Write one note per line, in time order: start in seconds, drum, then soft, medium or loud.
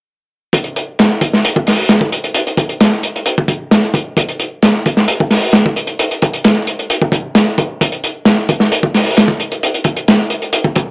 0.53 kick loud
0.53 closed hi-hat medium
0.64 closed hi-hat soft
0.76 closed hi-hat medium
0.99 snare loud
0.99 closed hi-hat medium
1.21 kick medium
1.21 closed hi-hat medium
1.33 snare soft
1.45 closed hi-hat medium
1.56 kick medium
1.67 snare soft
1.67 open hi-hat medium
1.89 snare medium
1.89 closed hi-hat medium
2.01 kick medium
2.12 closed hi-hat medium
2.24 closed hi-hat soft
2.34 closed hi-hat medium
2.47 closed hi-hat soft
2.57 kick medium
2.57 closed hi-hat medium
2.69 closed hi-hat soft
2.80 snare loud
2.80 closed hi-hat medium
3.03 closed hi-hat medium
3.16 closed hi-hat soft
3.26 closed hi-hat medium
3.38 kick medium
3.48 kick medium
3.48 closed hi-hat medium
3.71 snare loud
3.71 closed hi-hat medium
3.94 kick medium
3.94 closed hi-hat medium
4.17 kick medium
4.17 closed hi-hat medium
4.29 closed hi-hat soft
4.39 closed hi-hat medium
4.62 snare loud
4.62 closed hi-hat medium
4.86 kick medium
4.86 closed hi-hat medium
4.97 snare soft
5.08 closed hi-hat medium
5.20 kick medium
5.31 snare soft
5.31 open hi-hat medium
5.53 snare loud
5.53 closed hi-hat medium
5.66 kick medium
5.76 closed hi-hat medium
5.87 closed hi-hat soft
5.99 closed hi-hat medium
6.11 closed hi-hat soft
6.22 kick medium
6.22 closed hi-hat medium
6.34 closed hi-hat soft
6.44 snare loud
6.44 closed hi-hat medium
6.67 closed hi-hat medium
6.79 closed hi-hat soft
6.90 closed hi-hat medium
7.02 kick medium
7.12 kick medium
7.12 closed hi-hat medium
7.35 snare loud
7.35 closed hi-hat medium
7.58 kick medium
7.58 closed hi-hat medium
7.81 kick medium
7.81 closed hi-hat medium
7.92 closed hi-hat soft
8.04 closed hi-hat medium
8.25 snare loud
8.25 closed hi-hat medium
8.49 kick medium
8.49 closed hi-hat medium
8.60 snare soft
8.72 closed hi-hat medium
8.83 kick medium
8.94 snare soft
8.94 open hi-hat medium
9.17 snare loud
9.17 closed hi-hat medium
9.28 kick medium
9.40 closed hi-hat medium
9.52 closed hi-hat soft
9.63 closed hi-hat medium
9.74 closed hi-hat soft
9.84 kick medium
9.84 closed hi-hat medium
9.97 closed hi-hat soft
10.08 snare loud
10.08 closed hi-hat medium
10.30 closed hi-hat medium
10.42 closed hi-hat soft
10.53 closed hi-hat medium
10.64 kick medium
10.76 kick medium
10.76 closed hi-hat medium